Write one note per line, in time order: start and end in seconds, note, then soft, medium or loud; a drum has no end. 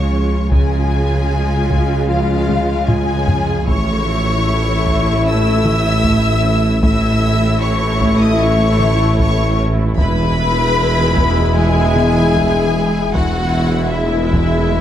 0.00 0.47 C#2 medium
0.00 0.48 C#2 medium
0.00 0.51 C#2 medium
0.00 0.47 C#3 medium
0.00 0.35 G#3 medium
0.00 0.48 G#3 medium
0.00 0.35 F4 medium
0.00 0.48 F4 medium
0.00 0.50 F4 medium
0.00 0.48 G#4 medium
0.00 0.50 C#5 medium
0.00 0.52 C#5 medium
0.00 0.51 C#6 medium
0.12 0.36 F3 medium
0.51 3.63 C#2 medium
0.51 3.51 C#2 medium
0.51 3.70 C#2 medium
0.51 0.75 C#3 medium
0.51 3.63 C#3 medium
0.51 3.63 G#3 medium
0.51 3.63 F4 medium
0.51 3.64 F4 medium
0.51 2.06 G#4 medium
0.51 3.63 G#4 medium
0.51 3.63 C#5 medium
0.51 2.06 G#5 medium
0.51 taiko medium
1.70 1.93 C#3 medium
1.70 taiko medium
2.09 2.33 F3 medium
2.09 2.89 F4 medium
2.09 2.89 F5 medium
2.49 2.73 G#3 medium
2.49 taiko mid medium
2.88 3.12 C#3 medium
2.88 3.68 G#4 medium
2.88 3.68 G#5 loud
2.88 taiko low-mid medium
3.28 3.52 F3 medium
3.28 taiko low medium
3.67 6.79 A1 medium
3.67 6.83 A1 medium
3.67 6.79 A2 medium
3.67 6.83 E3 medium
3.67 6.79 A3 medium
3.67 3.91 A3 medium
3.67 6.83 E4 medium
3.67 6.79 E4 medium
3.67 6.83 A4 medium
3.67 5.22 C#5 loud
3.67 6.83 E5 medium
3.67 5.22 C#6 loud
3.67 taiko medium
4.86 5.09 A3 medium
4.86 taiko medium
5.25 5.49 C#4 medium
5.25 6.83 E5 loud
5.25 6.82 E6 loud
5.65 5.89 E4 medium
5.65 taiko mid medium
6.04 6.28 A3 medium
6.04 taiko medium
6.44 6.67 C#4 medium
6.83 9.95 A1 medium
6.83 10.00 A1 medium
6.83 10.01 A1 medium
6.83 9.95 A2 medium
6.83 9.95 E3 medium
6.83 9.95 A3 medium
6.83 7.07 A3 loud
6.83 9.81 A3 loud
6.83 9.81 E4 medium
6.83 9.95 E4 medium
6.83 9.96 E4 medium
6.83 9.95 A4 medium
6.83 7.61 E5 loud
6.83 9.95 E5 medium
6.83 7.60 E6 loud
6.83 taiko medium
7.61 8.21 C#5 medium
7.61 8.20 C#6 loud
8.01 8.25 A3 loud
8.01 taiko medium
8.21 8.41 D#5 medium
8.21 8.41 D#6 loud
8.40 8.65 C#4 medium
8.40 9.17 C#5 loud
8.40 9.19 C#6 loud
8.80 9.04 E4 medium
8.80 taiko mid medium
9.19 9.44 A3 medium
9.19 9.58 C#5 medium
9.19 9.58 C#6 loud
9.19 taiko medium
9.59 9.83 C#4 medium
9.98 13.13 E1 medium
9.98 12.98 E1 medium
9.98 13.15 E1 medium
9.98 13.13 E2 medium
9.98 13.11 E3 medium
9.98 10.22 E3 loud
9.98 13.10 G#3 loud
9.98 13.11 G#3 medium
9.98 13.10 E4 medium
9.98 13.11 E4 medium
9.98 13.14 G#4 medium
9.98 11.52 B4 loud
9.98 13.11 E5 medium
9.98 11.52 B5 loud
9.98 taiko medium
11.17 11.41 E3 loud
11.17 taiko medium
11.56 11.80 G#3 medium
11.56 13.11 G#4 loud
11.56 13.14 G#5 loud
11.96 12.20 B3 medium
11.96 taiko mid medium
12.35 12.59 E3 loud
12.35 taiko medium
12.75 12.99 G#3 medium
13.14 14.81 E1 medium
13.14 14.81 E2 medium
13.14 13.38 E3 loud
13.14 14.81 E3 medium
13.14 14.81 G#3 medium
13.14 14.81 E4 medium
13.14 13.91 F#4 loud
13.14 14.81 G#4 medium
13.14 14.81 E5 medium
13.14 13.92 F#5 loud
13.14 taiko medium
13.93 14.81 E4 medium
13.93 14.81 E5 medium
14.33 14.56 E3 loud
14.33 taiko medium
14.72 14.81 G#3 medium